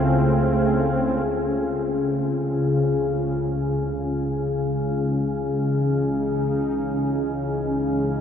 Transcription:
0.00 1.24 C#2 medium
0.00 1.23 C#3 medium
0.00 1.26 A3 medium
0.00 1.26 C4 medium
0.00 1.27 E4 medium
1.24 8.21 C#2 medium
1.24 8.21 C#3 medium
1.73 8.21 E3 medium
4.61 8.21 D#4 medium

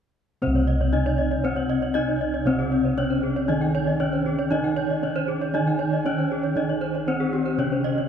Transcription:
0.42 1.43 C3 soft
0.42 1.91 C4 medium
0.42 0.93 C4 soft
0.42 0.54 C5 soft
0.47 3.48 C2 medium
0.55 0.67 C#5 soft
0.67 0.80 D#5 soft
0.81 0.93 C#5 soft
0.93 1.01 C#4 soft
0.93 1.44 D#4 soft
0.93 1.06 D#5 soft
1.06 1.18 C#5 soft
1.18 1.31 D#5 soft
1.31 1.44 C#5 soft
1.44 2.45 C3 soft
1.44 1.95 C4 soft
1.44 1.56 C5 soft
1.56 1.69 C#5 soft
1.70 1.82 D#5 soft
1.82 1.95 C#5 soft
1.94 2.03 C#4 soft
1.94 2.46 D#4 soft
1.94 2.07 D#5 soft
2.08 2.21 C#5 soft
2.21 2.34 D#5 soft
2.34 2.47 C#5 soft
2.46 3.49 C3 soft
2.46 2.98 C4 soft
2.46 3.96 C4 medium
2.46 2.59 C5 soft
2.59 2.72 G#4 soft
2.72 2.85 C#5 soft
2.85 2.98 C5 soft
2.98 3.49 C#4 soft
2.98 3.06 C#4 soft
2.98 3.10 C#5 soft
3.10 3.23 C5 soft
3.23 3.36 G#4 soft
3.36 3.49 C#5 soft
3.48 4.99 D#3 medium
3.48 4.51 D#3 soft
3.48 4.00 D#4 soft
3.48 3.62 D#5 soft
3.61 3.74 G5 soft
3.75 3.87 C#5 soft
3.87 4.00 D#5 soft
4.00 4.51 C#4 soft
4.00 4.08 C#4 soft
4.00 4.13 C#5 soft
4.13 4.26 C5 soft
4.26 4.39 G#4 soft
4.39 4.51 C#5 soft
4.51 5.52 D#3 soft
4.51 5.02 D#4 soft
4.51 6.01 D#4 medium
4.51 4.64 D#5 soft
4.64 4.77 G5 soft
4.76 4.89 C#5 soft
4.90 5.03 D#5 soft
5.02 5.10 C#4 soft
5.02 5.54 C#4 soft
5.02 5.16 C#5 soft
5.16 5.28 C5 soft
5.28 5.41 G#4 soft
5.41 5.54 C#5 soft
5.53 6.54 D#3 soft
5.53 7.04 D#3 soft
5.53 6.06 D#4 soft
5.53 5.67 D#5 soft
5.67 5.80 G5 soft
5.79 5.92 C#5 soft
5.93 6.05 D#5 soft
6.05 6.13 C#4 soft
6.05 6.57 C#4 soft
6.05 6.18 C#5 soft
6.19 6.31 C5 soft
6.31 6.44 G#4 soft
6.43 6.56 C#5 soft
6.56 7.59 D#3 soft
6.56 8.06 D#4 medium
6.56 7.08 D#4 soft
6.56 6.69 D#5 soft
6.69 6.82 C#5 soft
6.81 6.94 C5 soft
6.95 7.08 C#5 soft
7.07 7.59 C4 soft
7.07 7.15 C#4 soft
7.07 7.20 C5 soft
7.20 7.33 G#4 soft
7.33 7.46 G4 soft
7.46 7.59 C5 soft
7.58 8.09 C3 medium
7.58 8.09 C#3 soft
7.58 8.09 C#4 soft
7.58 7.72 C#5 soft
7.72 7.85 C5 soft
7.84 7.97 D#5 soft
7.98 8.09 C#5 soft

